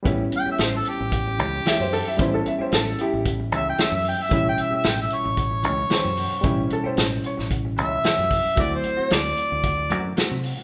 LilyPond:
<<
  \new Staff \with { instrumentName = "Harmonica" } { \time 4/4 \key a \mixolydian \tempo 4 = 113 r8 g''16 e''16 c''16 a'16 g'2~ g'8~ | g'8 r2 e''16 g''16 e''16 e''16 g''16 e''16 | e''16 g''16 e''16 e''16 g''16 e''16 cis''2~ cis''8~ | cis''8 r2 e''4. |
d''16 c''8. d''2 r4 | }
  \new Staff \with { instrumentName = "Upright piano" } { \time 4/4 \key a \mixolydian r2. e''16 c''16 a'16 e''16 | c''16 a'16 e''16 c''16 a'8 <e' g'>8 r2 | r2. c''4~ | c''8 a'16 c''8. cis''8 r2 |
r1 | }
  \new Staff \with { instrumentName = "Clean electric guitar" } { \time 4/4 \key a \mixolydian <e a cis' g'>16 r8 <a cis' g'>16 r4. <e a cis' g'>16 r16 <e a cis' g'>16 r8. | <e a cis' g'>16 r8 <a cis' g'>16 r4. <e a cis' g'>16 r16 <e a cis' g'>16 r8. | <e a cis' g'>16 r8 <a cis' g'>16 r4. <e a cis' g'>16 r16 <e a cis' g'>16 r8. | <e a cis' g'>16 r8 <a cis' g'>16 r4. <e a cis' g'>16 r16 <e a cis' g'>16 r8. |
<fis a c' fis'>16 r8 <a c' fis'>16 r4. <fis a c' fis'>16 r16 <fis a c' fis'>16 r8. | }
  \new Staff \with { instrumentName = "Reed electric piano" } { \time 4/4 \key a \mixolydian <g b cis' e'>1 | <g b cis' e'>1 | <b, g cis' e'>1 | <b, g cis' e'>1 |
<fis a c' e'>1 | }
  \new Staff \with { instrumentName = "Fingered electric bass" } { \clef bass \time 4/4 \key a \mixolydian a,,8 r8 a,,8 r16 a,,8. cis,8 r16 fis,8 r16 | a,,8 r8 a,,8 r16 a,,8. cis,8 r16 fis,8 r16 | a,,8 r8 a,,8 r16 a,,8. cis,8 r16 fis,8 r16 | a,,8 r8 a,,8 r16 a,,8. cis,8 r16 fis,8 r16 |
d,8 r8 d,8 r16 d,8. fis,8 r16 c8 r16 | }
  \new DrumStaff \with { instrumentName = "Drums" } \drummode { \time 4/4 <hh bd>8 hh8 <hh sn>8 hh8 <hh bd>8 hh8 <hh sn>8 hho8 | <hh bd>8 hh8 <hh sn>8 hh8 <hh bd>8 hh8 <hh sn>8 hho8 | <hh bd>8 hh8 <hh sn>8 hh8 <hh bd>8 hh8 <hh sn>8 hho8 | <hh bd>8 hh8 <hh sn>8 hh16 sn16 <hh bd>8 hh8 <hh sn>8 <hho bd>8 |
<hh bd>8 hh8 <hh sn>8 hh8 <hh bd>8 hh8 <hh sn>8 hho8 | }
>>